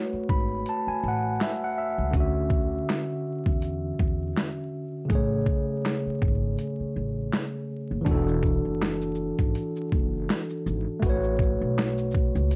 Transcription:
Already playing: A3 F#4 B4 C#5
0.13 muted upright bass stroke
0.29 G#1 B5, kick
0.66 A5, closed hi-hat
0.87 G#5, muted upright bass stroke
1.03 A1
1.08 F#5
1.41 E5, snare, clap, closed hi-hat
1.64 F#5
1.78 E5
1.98 C#2
2.11 D2 D3 C#4, kick, closed hi-hat
2.17 F#4 E5
2.50 kick
2.90 snare, clap, closed hi-hat
3.46 E2, kick
3.62 closed hi-hat
3.99 E2, kick
4.37 snare, clap, closed hi-hat
5.05 C#3 A3
5.10 A1 G#4, kick, closed hi-hat
5.15 C#5
5.46 kick
5.86 snare, clap, closed hi-hat
6.06 muted upright bass stroke
6.22 G#1, kick
6.58 closed hi-hat
6.80 muted upright bass stroke
6.96 A1
7.33 snare, clap, closed hi-hat
7.91 F#1
8.01 E3 D4
8.06 E1 F#4, kick, closed hi-hat, shaker
8.11 A4
8.28 shaker
8.43 kick, shaker
8.65 F#1
8.82 snare, clap, closed hi-hat, shaker
9.01 shaker
9.15 shaker
9.39 G#1, kick, shaker
9.55 closed hi-hat, shaker
9.77 shaker
9.92 F#1, kick, shaker
10.30 snare, clap, closed hi-hat, shaker
10.50 shaker
10.66 G#1, shaker
11.00 A1 A3 F#4, kick, closed hi-hat, shaker
11.06 B4 C#5
11.24 shaker
11.39 kick, shaker
11.61 B1
11.79 snare, clap, closed hi-hat, shaker
11.98 shaker
12.11 kick, shaker
12.35 C#2, shaker
12.51 closed hi-hat, shaker

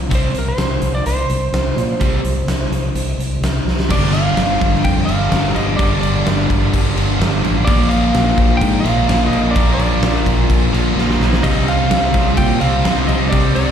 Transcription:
0.09 C2 C3 G3 C4, kick, closed hi-hat
0.15 C5
0.35 C2 A#4, closed hi-hat
0.48 C5
0.58 C2, snare, closed hi-hat
0.82 C2, closed hi-hat
0.95 D5
1.06 C2 C5, closed hi-hat
1.30 C2, closed hi-hat
1.53 C2, snare, closed hi-hat
1.76 A#2, closed hi-hat
2.01 C2 C3 G3 C4, kick, closed hi-hat
2.24 C2, closed hi-hat
2.47 C2, snare, closed hi-hat
2.71 C2, closed hi-hat
2.95 C2, closed hi-hat
3.18 C2, closed hi-hat
3.41 C2, snare, closed hi-hat
3.65 C2, snare
3.79 snare
3.89 G1 G2 D3 G3 A#3 D4 D5, kick, crash
4.13 F5, crash
4.37 G1, snare, crash
4.61 G1, kick, crash
4.74 snare
4.84 F2 G5, kick, crash
5.05 G1 D3 G3 F5, crash
5.11 G2
5.32 G1 G2 D3 G3, snare, crash
5.54 G1 G2 D3 G3 A#3 D4 D#5, crash
5.77 G1 G2 D3 G3 A#3 D4 D5, kick, crash
5.82 G3
6.01 G1 D5, crash
6.26 G1, snare, crash
6.50 G1, kick, crash
6.74 G1, kick, crash
6.96 G1 G2 D3 G3, crash
7.18 G1 G2 D3 G3, snare, crash
7.43 A1 G2 D3 G3 A#3 D4, crash
7.65 A#1 A#2 D3 F3 A#3 D4 D5, kick, crash
7.69 A#3
7.89 F5, crash
8.15 A#1, snare, crash
8.38 A#1, kick, crash
8.57 G5
8.61 G#2, kick, crash
8.80 A#3 F5
8.85 A#1 A#2 F3, crash
9.07 A#1 A#2 F3 A#3, snare, crash
9.27 D#5
9.31 A#1 A#2 D3 F3 A#3 D4, crash
9.51 A#2 D5
9.56 A#1 D3 F3 A#3 D4, kick, crash
9.74 D5
9.78 A#1, crash
10.02 A#1, snare, crash
10.26 A#1, kick, crash
10.49 A#1, kick, crash
10.72 A#1 A#2 F3 A#3, crash
10.95 A#1 A#2 F3, snare
10.99 A#3
11.10 snare
11.20 A#1 A#2 D3 F3 A#3 D4, snare
11.33 snare
11.41 C2 C3 G3 C4 D#4 D#5, kick, splash, crash
11.45 C4
11.68 F5, crash
11.91 C2, snare, crash
12.14 C2, kick, crash
12.26 snare
12.37 A#2 G5, kick, crash
12.60 C2 C3 G3 C4 F5, crash
12.85 C2 C3 G3 C4, snare, crash
13.07 C2 G3 C4 D#4 D#5, crash
13.11 C3
13.30 C2 C3 G3 D5, kick, crash
13.34 C4 D#4
13.55 C2 D5, crash

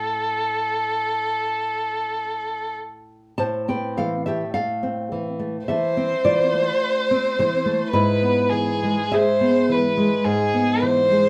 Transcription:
Already playing: A2 A3 C4 A4
3.38 A2 C5 A5
3.68 C4 B4 G5
3.97 E3 A4 F5
4.26 A3 G4 E5
4.54 A4 F5
4.83 C4
5.12 E3
5.39 A3
5.67 E3 A4 C5 E5
5.97 C4
6.25 E3 F4 D5
6.53 A3
7.11 C4
7.39 E3 E4 C5
7.66 A3
7.90 G#2 B4
7.95 E4
8.22 B3
8.50 E3 G#4
8.83 G#3
9.12 G#4 C5 E5
9.41 B3
9.69 E3 B4
9.97 G#3
10.25 G#2 G#4
10.54 B3
10.82 E3 C5
11.11 G#3

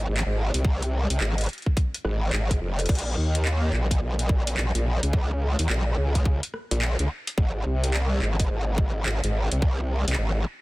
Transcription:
0.09 G#1
0.17 clap
0.26 G#1
0.54 C2, closed hi-hat
0.65 kick
0.82 closed hi-hat
1.10 C2, closed hi-hat
1.20 G#1, clap
1.38 closed hi-hat
1.41 closed hi-hat
1.44 closed hi-hat
1.46 closed hi-hat
1.49 closed hi-hat
1.53 closed hi-hat
1.58 closed hi-hat
1.62 closed hi-hat
1.66 kick
1.77 kick, closed hi-hat
1.94 closed hi-hat
2.05 G#1, cross-stick
2.33 G#1, clap
2.51 kick, closed hi-hat
2.61 F1
2.79 cross-stick, closed hi-hat
2.86 A#1, kick, closed hi-hat
2.89 closed hi-hat, crash
2.95 closed hi-hat
2.99 closed hi-hat
3.17 D#2
3.35 closed hi-hat
3.45 clap
3.73 A#1, clap
3.91 kick, closed hi-hat
4.01 A#1
4.19 closed hi-hat
4.29 kick
4.47 closed hi-hat
4.57 A#1, clap
4.75 A#1, closed hi-hat
5.03 C#2, closed hi-hat
5.13 kick
5.59 D#2, closed hi-hat
5.69 A#1, clap
5.97 C#2
6.15 kick, closed hi-hat
6.25 kick
6.43 closed hi-hat
6.54 cross-stick
6.71 A#1, closed hi-hat
6.82 clap
6.99 C#2, closed hi-hat
7.27 closed hi-hat
7.38 G#1, kick
7.66 C2
7.84 closed hi-hat
7.94 clap
8.22 G#1, clap
8.40 kick, closed hi-hat
8.50 G#1
8.78 kick
9.06 G#1, clap
9.24 G#1, closed hi-hat
9.52 C2, closed hi-hat
9.62 kick
10.08 C2, closed hi-hat
10.13 clap
10.18 G#1

